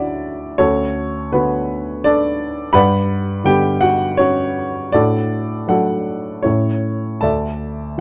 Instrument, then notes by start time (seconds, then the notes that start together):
grand piano
Already playing: D2 D3 F#3 C#4 D4 E4 F#4 A4 C#5 D5 E5 F#5 A5
0.58 D2 C#4 F#4 A4 C#5
1.32 D3 A3 B3 F#4 B4
2.04 D4 A4 D5
2.73 G2 B4 D5 F#5 B5
3.44 D3 G3 B3 G4 G5
3.81 F#4 F#5
4.17 C#4 F#4 C#5
4.92 A2 D4 F#4 A4 D5
5.68 F#3 A3 D4 F#4 A4 F#5
6.43 A2 C#4 E4 A4 C#5
7.21 D2 A4 D5 E5 A5